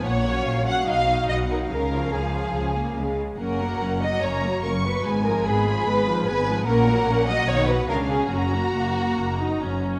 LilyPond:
<<
  \new Staff \with { instrumentName = "Violin section" } { \time 4/4 \key fis \major \tempo 4 = 145 fis''4 eis''4 dis''4 fis''4 | eis''2.~ eis''8 r8 | fis''2 ais''4 cis'''4 | aes''4 ces'''2 aes''4 |
fis''2. eis''4 | ais''2.~ ais''8 r8 | }
  \new Staff \with { instrumentName = "Violin section" } { \time 4/4 \key fis \major cis''4. fis''8 eis''4 dis''8 ais'8 | ais'4 gis'2~ gis'8 r8 | ais'4. dis''8 cis''4 ais'8 b'8~ | b'8 ais'8 aes'4 ces''4 ces''4 |
ais'4. dis''8 cis''8 b'8 ais'8 gis'8 | fis'2.~ fis'8 r8 | }
  \new Staff \with { instrumentName = "Viola section" } { \time 4/4 \key fis \major r8 <fis cis'>4 <fis cis'>8 <fis dis'>8 <fis dis'>4 <fis dis'>8 | r8 <eis cis'>8 eis4. ais8 gis4 | <ais cis'>8 <fis ais>8 <ais cis'>8 <fis ais>8 <ais cis'>8 <fis ais>8 <ais cis'>8 <fis ais>8 | <aes ces'>8 <f aes>8 <aes ces'>8 <f aes>8 <aes ces'>8 <f aes>8 <aes ces'>8 <f aes>8 |
<ais cis'>8 <fis ais>8 <ais cis'>8 <fis ais>8 <dis dis'>8 <fis fis'>8 <cis' d'>8 <b cis'>8 | <fis cis'>8 <ais fis'>8 ais4. dis'8 cis'4 | }
  \new Staff \with { instrumentName = "Cello section" } { \clef bass \time 4/4 \key fis \major ais,4 ais,4 b,4 b,4 | cis4 cis4 cis4 cis4 | fis,4 fis,4 fis,4 fis,4 | aes,4 aes,4 aes,4 aes,4 |
ais,4 ais,4 b,4 cis4 | fis,4 fis,4 fis,4 fis,4 | }
  \new Staff \with { instrumentName = "Double bass section" } { \clef bass \time 4/4 \key fis \major ais,,4 ais,,4 b,,4 b,,4 | cis,4 cis,4 cis,4 cis,4 | fis,,4 fis,,4 fis,,4 fis,,4 | aes,,4 aes,,4 aes,,4 aes,,4 |
ais,,4 ais,,4 b,,4 cis,4 | fis,,4 fis,,4 fis,,4 fis,,4 | }
>>